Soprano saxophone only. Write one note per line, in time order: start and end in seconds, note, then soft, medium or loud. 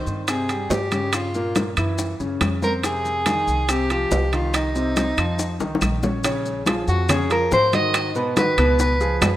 0.29 0.73 G#4 medium
0.71 1.16 G4 medium
1.14 1.56 F4 medium
2.64 2.73 A#4 medium
2.86 3.71 G#4 loud
3.70 3.91 G4 medium
3.92 4.35 G4 medium
4.34 4.54 F4 medium
4.56 5.79 D#4 medium
6.89 7.12 F#4 medium
7.11 7.31 G#4 medium
7.32 7.51 A#4 medium
7.53 7.72 C5 loud
7.75 8.14 D#5 loud
8.38 8.77 B4 medium
8.81 9.37 B4 medium